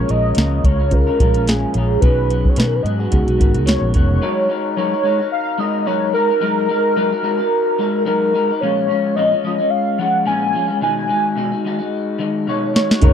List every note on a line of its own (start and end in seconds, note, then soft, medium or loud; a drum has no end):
0.00 0.62 C#4 medium
0.00 0.63 F4 medium
0.00 0.63 G#4 medium
0.00 0.63 A#4 medium
0.00 0.12 C#5 loud
0.08 0.32 A#1 medium
0.08 0.36 G#3 medium
0.08 0.36 C#4 medium
0.08 0.36 F4 medium
0.08 0.37 A#4 medium
0.08 0.67 D#5 loud
0.08 closed hi-hat medium
0.35 0.59 C#2 medium
0.35 0.64 A#2 medium
0.35 0.64 F3 medium
0.35 0.63 G#3 medium
0.35 0.63 C#4 medium
0.35 0.64 F4 medium
0.35 0.65 A#4 medium
0.35 snare loud
0.35 closed hi-hat medium
0.64 1.08 C#2 medium
0.64 0.80 G#3 medium
0.64 0.79 C#4 medium
0.64 0.78 F4 medium
0.64 0.78 A#4 medium
0.64 0.94 C#5 medium
0.64 kick medium
0.64 closed hi-hat medium
0.79 1.08 G#3 soft
0.79 1.07 C#4 soft
0.79 1.06 F4 soft
0.79 1.05 A#4 soft
0.91 1.12 C#4 medium
0.91 1.13 F4 medium
0.91 1.13 G#4 medium
0.91 1.50 A#4 loud
0.91 1.14 C#5 medium
0.91 kick medium
0.91 closed hi-hat medium
1.07 1.18 G#3 soft
1.07 1.19 C#4 soft
1.07 1.20 F4 soft
1.07 1.19 A#4 soft
1.19 1.64 A#1 medium
1.19 1.34 G#3 medium
1.19 1.81 C#4 medium
1.19 1.35 C#4 medium
1.19 1.81 F4 medium
1.19 1.34 F4 medium
1.19 1.81 G#4 medium
1.19 1.82 A#4 medium
1.19 1.33 A#4 medium
1.19 kick medium
1.19 closed hi-hat medium
1.34 1.46 G#3 soft
1.34 1.47 C#4 soft
1.34 1.48 F4 soft
1.34 1.47 A#4 soft
1.34 closed hi-hat soft
1.47 1.75 A#2 medium
1.47 1.75 F3 medium
1.47 1.74 G#3 medium
1.47 1.75 C#4 medium
1.47 1.76 F4 medium
1.47 2.00 G#4 medium
1.47 1.76 A#4 medium
1.47 snare loud
1.47 closed hi-hat medium
1.74 1.97 A#1 medium
1.74 2.03 G#3 medium
1.74 2.03 C#4 medium
1.74 2.04 F4 medium
1.74 closed hi-hat medium
1.78 2.04 A#4 medium
2.00 2.46 B1 medium
2.00 2.30 B2 medium
2.00 2.30 D#3 medium
2.00 2.28 F#3 medium
2.00 2.29 B3 medium
2.00 2.83 C#4 medium
2.00 2.83 D#4 medium
2.00 2.83 F#4 medium
2.00 2.30 F#4 medium
2.00 2.84 G#4 medium
2.00 2.51 B4 loud
2.00 kick medium
2.00 closed hi-hat medium
2.04 2.30 G#4 medium
2.29 2.56 F#3 soft
2.29 2.56 B3 medium
2.29 2.57 F#4 medium
2.29 2.57 G#4 medium
2.29 closed hi-hat medium
2.45 kick medium
2.49 2.59 C#5 medium
2.56 2.85 B2 medium
2.56 2.79 B2 medium
2.56 2.85 D#3 medium
2.56 2.83 F#3 medium
2.56 2.83 B3 medium
2.56 2.85 F#4 medium
2.56 2.85 G#4 medium
2.56 2.68 B4 medium
2.56 snare loud
2.56 closed hi-hat medium
2.67 2.77 A#4 medium
2.76 2.84 B4 medium
2.83 3.06 G#2 medium
2.83 3.00 F#3 soft
2.83 3.00 B3 medium
2.83 2.99 F#4 medium
2.83 2.98 G#4 medium
2.83 3.00 D#5 medium
2.83 closed hi-hat medium
2.99 3.12 F#3 soft
2.99 3.11 B3 soft
2.99 3.66 F#4 medium
2.99 3.12 F#4 soft
2.99 3.12 G#4 soft
3.11 3.25 C#2 medium
3.11 3.27 C#3 medium
3.11 3.27 G#3 medium
3.11 3.33 B3 medium
3.11 3.27 B3 medium
3.11 3.33 D#4 medium
3.11 3.26 F#4 medium
3.11 3.34 F#4 medium
3.11 3.34 G#4 medium
3.11 kick medium
3.11 closed hi-hat medium
3.27 3.37 B1 medium
3.27 3.38 G#3 soft
3.27 3.39 B3 soft
3.27 3.40 F#4 medium
3.27 closed hi-hat soft
3.38 3.55 G#1 medium
3.38 3.54 C#3 medium
3.38 3.55 G#3 medium
3.38 4.00 B3 medium
3.38 3.54 B3 medium
3.38 4.01 D#4 medium
3.38 4.01 F#4 medium
3.38 3.52 F#4 medium
3.38 4.02 A#4 medium
3.38 kick medium
3.38 closed hi-hat medium
3.54 3.76 C#2 medium
3.54 3.65 G#3 soft
3.54 3.65 B3 soft
3.54 3.67 F#4 soft
3.54 closed hi-hat soft
3.66 3.93 C#3 medium
3.66 3.93 G#3 medium
3.66 3.94 B3 medium
3.66 3.95 F#4 medium
3.66 3.92 C#5 medium
3.66 snare loud
3.66 closed hi-hat medium
3.82 3.92 A#1 medium
3.94 4.17 F1 medium
3.94 4.21 C#3 medium
3.94 4.21 G#3 medium
3.94 4.22 B3 medium
3.94 4.22 F#4 medium
3.94 4.73 C#5 medium
3.94 kick medium
3.94 closed hi-hat medium
4.22 4.49 F#3 medium
4.22 4.48 G#3 medium
4.22 4.49 D#4 medium
4.22 4.50 F#4 medium
4.22 4.50 A#4 medium
4.49 4.76 G#3 medium
4.49 4.77 D#4 medium
4.49 4.77 F#4 medium
4.49 4.78 A#4 medium
4.76 4.92 F#3 medium
4.76 4.92 G#3 medium
4.76 4.93 D#4 medium
4.76 4.92 F#4 medium
4.76 4.90 A#4 loud
4.76 5.28 C#5 medium
4.91 5.03 D#4 soft
4.91 5.04 F#4 medium
4.91 5.04 A#4 medium
5.03 5.19 G#3 medium
5.03 5.20 D#4 medium
5.03 5.19 F#4 medium
5.03 5.17 A#4 medium
5.18 5.58 D#4 soft
5.18 5.59 F#4 soft
5.18 5.59 A#4 medium
5.32 5.61 F5 loud
5.58 5.85 G#3 medium
5.58 5.86 D#4 medium
5.58 5.86 F#4 medium
5.58 5.87 A#4 medium
5.58 5.88 D#5 loud
5.86 6.14 F#3 medium
5.86 6.12 G#3 medium
5.86 6.13 D#4 medium
5.86 6.14 F#4 medium
5.86 6.15 A#4 medium
5.86 6.13 C#5 loud
6.13 6.29 G#3 medium
6.13 6.30 D#4 medium
6.13 6.29 F#4 medium
6.13 8.03 A#4 loud
6.13 6.28 A#4 medium
6.29 6.40 D#4 soft
6.29 6.40 F#4 medium
6.29 6.41 A#4 medium
6.40 6.69 F#3 medium
6.40 6.67 G#3 medium
6.40 6.68 D#4 medium
6.40 6.69 F#4 medium
6.40 6.70 A#4 medium
6.69 6.95 G#3 medium
6.69 6.96 D#4 medium
6.69 6.96 F#4 medium
6.69 6.97 A#4 medium
6.96 7.12 F#3 medium
6.96 7.12 G#3 medium
6.96 7.12 D#4 medium
6.96 7.11 F#4 loud
6.96 7.08 A#4 loud
7.10 7.22 D#4 soft
7.10 7.23 F#4 medium
7.10 7.23 A#4 medium
7.22 7.39 G#3 medium
7.22 7.39 D#4 medium
7.22 7.37 F#4 medium
7.22 7.36 A#4 medium
7.38 7.78 D#4 medium
7.38 7.79 F#4 medium
7.38 7.79 A#4 medium
7.79 8.05 G#3 medium
7.79 8.05 D#4 medium
7.79 8.06 F#4 medium
7.79 8.06 A#4 medium
8.06 8.34 F#3 medium
8.06 8.32 G#3 medium
8.06 8.33 D#4 loud
8.06 8.34 F#4 loud
8.06 8.62 A#4 loud
8.06 8.34 A#4 medium
8.33 8.49 G#3 medium
8.33 8.50 D#4 medium
8.33 8.50 F#4 medium
8.33 8.48 A#4 medium
8.49 8.63 D#4 soft
8.49 8.63 F#4 medium
8.49 8.62 A#4 medium
8.61 8.89 A#2 medium
8.61 8.87 F3 medium
8.61 8.88 G#3 loud
8.61 8.89 C#4 medium
8.61 8.89 F4 medium
8.61 9.17 C#5 loud
8.88 9.16 F3 medium
8.88 9.16 G#3 medium
8.88 9.17 C#4 medium
8.88 9.17 F4 medium
9.16 9.32 A#2 medium
9.16 9.32 F3 medium
9.16 9.32 G#3 medium
9.16 9.32 C#4 medium
9.16 9.30 F4 medium
9.16 9.72 D#5 loud
9.31 9.44 G#3 soft
9.31 9.45 C#4 medium
9.31 9.44 F4 medium
9.44 9.59 F3 medium
9.44 9.59 G#3 medium
9.44 9.58 C#4 medium
9.44 9.57 F4 medium
9.58 9.98 G#3 medium
9.58 9.99 C#4 medium
9.58 9.99 F4 medium
9.70 10.01 F5 loud
9.99 10.25 F3 medium
9.99 10.25 G#3 medium
9.99 10.26 C#4 medium
9.99 10.26 F4 medium
9.99 10.26 F#5 loud
10.25 10.54 A#2 medium
10.25 10.52 F3 medium
10.25 10.54 G#3 medium
10.25 10.54 C#4 medium
10.25 10.55 F4 medium
10.25 10.78 G#5 loud
10.53 10.69 F3 medium
10.53 10.69 G#3 medium
10.53 10.67 C#4 medium
10.53 10.66 F4 medium
10.67 10.81 G#3 medium
10.67 10.81 C#4 medium
10.67 10.81 F4 medium
10.81 11.09 B2 medium
10.81 11.06 D#3 medium
10.81 11.08 G#3 medium
10.81 11.08 D#4 medium
10.81 11.09 F#4 medium
10.81 11.88 G#5 loud
11.08 11.35 D#3 medium
11.08 11.36 G#3 medium
11.08 11.36 D#4 medium
11.08 11.37 F#4 medium
11.36 11.52 B2 medium
11.36 11.52 D#3 medium
11.36 11.52 G#3 medium
11.36 11.52 D#4 medium
11.36 11.50 F#4 medium
11.51 11.64 G#3 soft
11.51 11.65 D#4 medium
11.51 11.64 F#4 medium
11.65 11.80 D#3 medium
11.65 11.80 G#3 medium
11.65 11.79 D#4 medium
11.65 11.77 F#4 medium
11.79 12.18 G#3 soft
11.79 12.19 D#4 medium
11.79 12.19 F#4 medium
12.19 12.46 D#3 medium
12.19 12.47 G#3 medium
12.19 12.47 D#4 medium
12.19 12.48 F#4 medium
12.47 12.75 B2 medium
12.47 12.72 D#3 medium
12.47 12.74 G#3 medium
12.47 12.75 D#4 medium
12.47 12.75 F#4 medium
12.47 12.73 C#5 medium
12.74 12.89 D#3 medium
12.74 12.90 G#3 medium
12.74 12.90 D#4 medium
12.74 12.88 F#4 medium
12.74 13.00 C#5 medium
12.74 snare loud
12.89 13.01 G#3 soft
12.89 13.01 D#4 medium
12.89 13.01 F#4 medium
12.89 snare medium
13.01 13.13 F#1 loud
13.01 13.13 F#3 medium
13.01 13.13 G#3 medium
13.01 13.13 C#4 medium
13.01 13.13 D#4 medium
13.01 13.13 F#4 medium
13.01 13.13 G#4 medium
13.01 13.13 A#4 medium
13.01 13.13 C#5 loud
13.01 kick loud
13.01 closed hi-hat medium